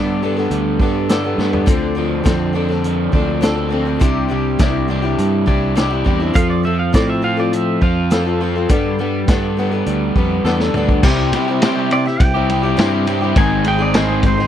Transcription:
Already playing: G2 D3 G3 B3 D4 A4
0.22 G3 B3 D4 A4
0.36 G3 B3 D4 A4, snare
0.50 D2 G3, closed hi-hat
0.79 G2 G3 B3 D4 A4, kick
1.09 G2 D3 G3 B3 D4 A4, snare, closed hi-hat
1.24 G3 B3 D4 A4
1.38 G2 G3 B3 D4 A4, snare
1.52 G3 B3 D4 A4, floor tom
1.66 D2 D3 F3 C4 D4 A4, kick, closed hi-hat
1.95 F3 C4 D4 A4
2.24 F2 D3 F3 C4 D4 A4, kick, snare, closed hi-hat
2.53 F3 C4 D4 A4
2.68 C4 D4 A4, snare
2.84 F3, closed hi-hat
3.12 D2 F3 C4 D4 A4, kick
3.41 D3 F3 C4 D4 A4, snare, closed hi-hat
3.54 C4 D4 A4
3.69 F3 C4 D4 A4
3.85 C4 D4 A4
3.99 C2 C3 G3 D4 E4 G4, kick, closed hi-hat
4.28 G3 D4 E4 G4
4.59 C2 C3 G3 C4 D4 E4 G4, kick, snare, closed hi-hat
4.88 G3 D4 E4 G4
5.02 D4 E4 G4
5.18 G2 G3, closed hi-hat
5.46 C2 G3 D4 E4 G4, kick
5.75 C3 G3 D4 E4 G4, snare, closed hi-hat
5.90 D4 E4 G4
6.04 E2 G3 C4 D4 E4 G4, kick
6.20 D4 E4 G4
6.34 F2 F3 C4 F4 A4 F5, kick, closed hi-hat
6.50 D5
6.63 F3 C4 F4 A4 E5
6.79 F5
6.93 A2 F3 C4 F4 A4 D5, kick, snare, closed hi-hat
7.10 E5
7.22 F3 C4 F4 A4 F5
7.37 C4 F4 A4 D5
7.53 F3 E5, closed hi-hat
7.81 F2 F3 C4 F4 A4 F5, kick
8.10 F3 C4 F4 A4, snare, closed hi-hat
8.25 C4 F4 A4
8.41 F3 C4 F4 A4
8.55 C4 F4 A4
8.69 G2 D3 G3 B3 D4 A4, kick, closed hi-hat
8.99 G3 B3 D4 A4
9.28 G2 D3 G3 B3 D4 A4, kick, snare, closed hi-hat
9.57 G3 B3 D4 A4
9.71 G3 B3 D4 A4
9.86 D2 G3, closed hi-hat
10.16 F2 G3 B3 D4 A4, kick
10.44 E2 G2 D3 G3 B3 D4 A4, snare
10.60 G3 B3 D4 A4, snare
10.74 D2 G3 B3 D4 A4, mid tom
10.89 G3 B3 D4 A4, kick
11.03 C2 C3 G3 C4 E4 G4, kick, crash
11.32 C3 G3 C4 E4 G4, ride
11.48 C4 E4 G4
11.62 C3 G3 C4 E4 G4, snare, ride
11.76 C4 E4 G4
11.90 G3 C4 E4 G4 D5, muted overdriven electric guitar stroke, ride
12.05 C4 E4 G4 E5, snare
12.20 C2 G5, kick, ride
12.34 C4 E4 G4
12.49 G3 C4 E4 G4, ride
12.63 C4 E4 G4
12.77 G2 C3 G3 C4 E4 G4, snare, ride
12.92 C4 E4 G4
13.07 G3 C4 E4 G4, ride
13.21 C4 E4 G4
13.36 G#1 G#2 D#3 G#3 C4 D#4 G#4 G#5, kick, ride
13.64 G#3 C4 D#4 G#4, ride
13.68 G5
13.79 G#3 C4 D#4 G#4 D5
13.94 G#2 D#3 G#3 C4 D#4 G#4 C5, snare, ride
14.08 G#3 C4 D#4 G#4
14.23 G#3 C4 D#4 G#4 C5, muted overdriven electric guitar stroke, kick, ride
14.37 G#3 C4 D#4 G#4, snare

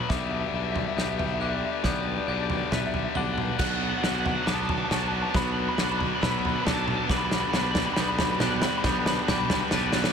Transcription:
Already playing: B2 B3 D4 B4
0.03 B5
0.09 B1 G2 D3 G3 B3 G4 D5 E5 D6, kick, snare, floor tom
0.17 E5
0.26 E5
0.33 E5
0.40 E5
0.48 B1 E5
0.54 G2 D3 G3 E5
0.64 E5
0.72 E5, floor tom
0.79 E5
0.88 E5
0.95 B1 G2 D3 G3 B3 E5 G6, snare
1.04 E5
1.11 E5
1.19 E5, floor tom
1.26 E5
1.34 E5
1.40 G2 D3 G3 G4 E5 F#6
1.49 E5
1.57 E5
1.65 E5
1.72 E5
1.83 B1 G2 D3 G3 B3 D5 G6, kick, snare, floor tom
1.92 D5
2.01 D5
2.08 D5
2.17 D5
2.27 B1 G2 D3 G3 D4 D5 G6
2.34 D5
2.42 D5
2.50 D5, floor tom
2.57 D5
2.65 D5
2.71 B1 G2 D3 G3 B4 E5 A6, snare, floor tom, mid tom
2.82 E5
2.87 E5
2.94 E5, floor tom
3.03 E5
3.10 E5
3.14 B1 G2 D3 G3 D4 F#5 G7, floor tom
3.24 F#5
3.33 F#5
3.38 mid tom
3.42 F#5
3.50 F#5
3.57 B1 B2 F#3 B3 B4 F#5 F#6, kick, snare, floor tom, crash
3.62 D4
3.67 F#5
3.75 F#5
3.83 F#5
3.89 F#5
3.98 B2 F#5
4.02 B1 F#3 B3 D4 F#5, snare
4.12 F#5
4.20 F#5
4.26 F#5, floor tom
4.36 F#5
4.43 B1 B2 F#3 B3 F#5 D6
4.47 B3 D4 A5, snare
4.55 A5
4.63 A5
4.69 A5, floor tom
4.78 A5
4.84 A5
4.89 B1 B2 F#3 B3 D4 F#4 A5, snare
5.00 A5
5.08 A5
5.15 A5
5.22 A5
5.30 B1 B2 B3 A5 F#6
5.34 F#3 B3 D4 B5, kick, snare, floor tom
5.52 B5
5.59 B5
5.69 B5
5.76 B1 B2 F#3 B3 D4 B5 F#6, snare
5.80 D4
5.84 B5
5.91 B5
5.99 B5, floor tom
6.08 B5
6.15 B5
6.21 B1 B2 F#3 B3 D4 B4 B5 E6, snare, floor tom, mid tom
6.30 B5
6.39 B5
6.45 B5, floor tom
6.54 B5
6.62 B1 B2 F#3 B3 D4 A5 B5
6.66 D4, snare, floor tom
6.74 A5
6.81 A5
6.87 A5, mid tom
6.96 A5
7.04 G2 A5
7.09 B1 B2 D3 G3 B3 D4 G5 B5 D6, kick, snare, floor tom
7.18 B5
7.25 B5
7.31 B5, snare
7.40 B5
7.49 G2 B2 B5
7.53 B1 D3 G3 B3 D4 B5, snare
7.63 B5
7.71 B5, snare, floor tom
7.79 B5
7.86 B5
7.93 G2 B2 D3 G3 B5 G6, snare
7.98 B1 B3 D4
8.02 B5
8.09 B5
8.18 B5, snare, floor tom
8.25 B5
8.32 B5
8.39 G2 B2 D3 G3 B3 D4 G4 B5 F#6, snare, mid tom
8.47 B5
8.55 B5
8.62 B5, snare
8.69 B5
8.78 B5
8.83 B1 G2 B2 D3 G3 B3 D4 B5 G6, kick, snare, floor tom
8.92 B5
8.99 B5
9.06 B5, snare
9.16 B5
9.23 B5
9.28 B1 G2 B2 D3 G3 B3 D4 B5 G6, snare, floor tom, mid tom
9.38 B5
9.45 B5
9.50 B5, snare, floor tom
9.61 B5
9.71 B1 G2 B2 D3 G3 B3 D4 B4 A6, snare
9.92 snare
10.04 snare

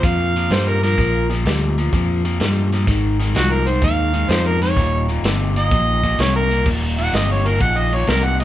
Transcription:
0.03 F2 A#2 F3 F5, kick, closed hi-hat
0.36 A#2 F3, closed hi-hat
0.50 G2 A#2 G3 C5, snare, closed hi-hat
0.68 A#4
0.83 A#2 F3 A#4, snare, closed hi-hat
0.98 A#1 A#2 F3, kick, snare, closed hi-hat
1.30 A#2 F3, snare, closed hi-hat
1.45 D2 A#2 G3, snare, closed hi-hat
1.78 A#2 F3, closed hi-hat
1.93 F2 A#2 F3, kick, closed hi-hat
2.25 A#2 F3, closed hi-hat
2.40 G2 A#2 G3, snare, closed hi-hat
2.72 A#2 F3, snare, closed hi-hat
2.87 G#1 G#2 D#3, kick, snare, closed hi-hat
3.19 G#2 D#3, snare, closed hi-hat
3.35 C2 G#2 F3 F#4, snare, closed hi-hat
3.52 A#4
3.67 G#2 D#3 C5, closed hi-hat
3.82 D#2 G#2 D#3 F5, kick, snare, closed hi-hat
4.13 G#2 D#3, closed hi-hat
4.29 F2 G#2 F3 C5, snare, closed hi-hat
4.47 A#4
4.61 G#2 D#3 C#5, snare, closed hi-hat
4.77 D#1 D#2 A#2, kick, snare, closed hi-hat
5.08 D#2 A#2, closed hi-hat
5.23 G1 D#2 C3, snare, closed hi-hat
5.56 D#2 A#2 D#5, closed hi-hat
5.71 A#1 D#2 A#2, kick, closed hi-hat
6.04 D#2 A#2, kick, closed hi-hat
6.19 C2 D#2 C3 C#5, snare, closed hi-hat
6.36 A#4
6.51 D#2 A#2, closed hi-hat
6.66 D#1 D#2 A#2, kick, crash
6.98 D#2 A#2 F#5, ride
7.13 G1 D#2 C3 D#5, snare, ride
7.31 C#5
7.46 D#2 A#2 A#4, ride
7.60 A#1 D#2 A#2 F#5, kick, ride
7.77 D#5
7.93 D#2 A#2 C#5, ride
8.07 C2 D#2 C3 A#4, snare, ride
8.24 F#5
8.40 D#2 A#2 D#5, ride

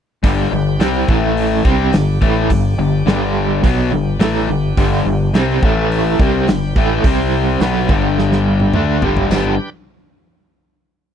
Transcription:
0.23 G1 G2 D3 G3 D4 G4 B4 G5, kick, open hi-hat
0.51 G1 G2 D3
0.80 C2 C3 G3 C4, snare, open hi-hat
1.08 A1 A2 E3 A3 E4 A4 E5, kick
1.37 open hi-hat
1.65 C2 C3 G3 B3 C4 D4 G4 D5, kick
1.93 G1 G2 D3, snare, open hi-hat
2.21 A1 A2 E3 A3, kick
2.50 G1 G2 D3, kick, open hi-hat
2.78 G1 G2 D3
3.06 G1 G2 D3 G3, snare, open hi-hat
3.63 B1 B2 F#3 B3, kick, open hi-hat
3.91 G1 G2 D3 B3 D4 G4
4.19 A1 A2 E3 A3, snare, open hi-hat
4.48 G1 G2 D3
4.77 G1 G2 D3 G3, kick, open hi-hat
4.93 snare
5.05 G1 G2 D3
5.34 C2 C3 G3 C4, snare, open hi-hat
5.62 A1 A2 E3 A3 E4 A4 E5, kick
5.92 open hi-hat
6.19 C2 C3 G3 C4 D4 G4 B4 G5, kick
6.47 G1 G2 D3, snare, open hi-hat
6.76 A1 A2 E3 A3, kick
7.04 C2 C3 G3 C4 G4 C5 G5, kick, open hi-hat
7.60 B1 B2 F#3 B3 D4 G4 B4 G5, snare, open hi-hat
7.89 G1 G2 D3 G3, kick
8.19 snare
8.32 snare
8.60 high tom
8.73 D2 D3 A3 D4, mid tom
9.02 G1 G2 D3 G3, floor tom
9.17 floor tom
9.30 G1 G2 D3 G3 B3 D4 G4 B4 G5, snare, splash

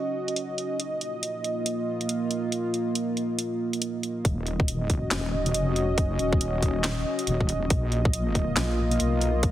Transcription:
Already playing: C#4 F#4 D#5
0.28 closed hi-hat
0.36 closed hi-hat
0.58 closed hi-hat
0.80 A#3 F4, closed hi-hat
1.01 closed hi-hat
1.23 closed hi-hat
1.44 closed hi-hat
1.66 closed hi-hat
2.01 closed hi-hat
2.09 closed hi-hat
2.31 closed hi-hat
2.52 closed hi-hat
2.74 closed hi-hat
2.95 closed hi-hat
3.17 closed hi-hat
3.39 closed hi-hat
3.73 closed hi-hat
3.82 closed hi-hat
4.03 closed hi-hat
4.25 D#1 C#4 F#4 D#5, kick, closed hi-hat
4.47 closed hi-hat
4.60 kick
4.68 closed hi-hat
4.90 kick, closed hi-hat
5.11 D#1, snare, clap, closed hi-hat
5.46 closed hi-hat
5.54 F1, closed hi-hat
5.76 closed hi-hat
5.98 kick, closed hi-hat
6.19 D#1, closed hi-hat
6.33 kick
6.41 closed hi-hat
6.62 kick, closed hi-hat
6.84 snare, clap, closed hi-hat
7.19 closed hi-hat
7.27 D#1, closed hi-hat
7.40 kick
7.49 closed hi-hat
7.70 A#1 A#3 F4 D#5, kick, closed hi-hat
7.92 closed hi-hat
8.05 kick
8.13 closed hi-hat
8.35 kick, closed hi-hat
8.57 A#1, snare, clap, closed hi-hat
8.91 closed hi-hat
9.00 B1, closed hi-hat
9.21 closed hi-hat
9.43 kick, closed hi-hat

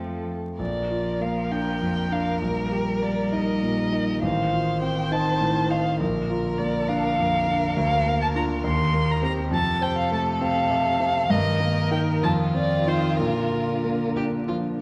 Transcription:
Already playing: F2 F3 A3 C4 F4 A4
0.58 A#1 F3 A#4 D5
0.90 F4
1.21 A#3 F5
1.51 D4 G5
1.82 F2
2.12 D4 F5
2.42 A#1 G3 A#4
2.72 G4
3.02 A#3 D5
3.32 D#4 D#5
3.62 A#2
3.92 D#4
4.22 A1 D#3 C5 F5
4.52 F4
4.82 C4 G5
5.11 D#4 A5
5.41 A2
5.70 D#4 F5
5.99 A#1 D3 A#4
6.30 F4
6.58 A#3 D5
6.89 D4 F5
7.19 F2
7.48 D4
7.76 D2 F5
8.06 A#3
8.22 A5
8.35 D4 F4 A#5
8.64 D#2 D#3 C6
8.93 A#3
9.11 A#5
9.22 C4 G4 A#5
9.51 F2 C3 A4 A5
9.81 C5 G5
9.98 F5
10.11 A3 A5
10.41 C4 F5
10.70 C3
11.00 C4
11.30 G2 D#3 A#4 D#5
11.60 A#3
11.91 D#4 A#4 G5
12.23 F2 F4 A5
12.54 C4 D5
12.86 D#4 F4 C5
13.18 A#2 D3 A#4
13.51 F4
13.84 A#3
14.16 D4 G4
14.48 F3 F4

